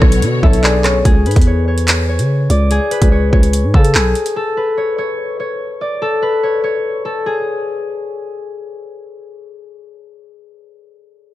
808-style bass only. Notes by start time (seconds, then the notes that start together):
0.02 B1
0.22 B2
0.43 B1
1.05 C#2
1.26 G#2
1.36 E2
2.19 C#3
2.50 C#2
3.02 C#2
3.33 C#2
3.64 G#2
3.74 C#3
3.95 B1